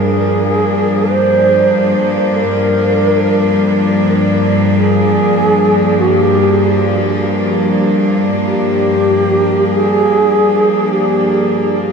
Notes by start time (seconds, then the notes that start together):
Already playing: G2 F3 A#3 D4 G#4
1.11 C5
2.32 A#4
4.76 G#4
6.00 F#4
6.12 G4
8.47 G4
9.67 G#4
10.88 G#4
10.92 G4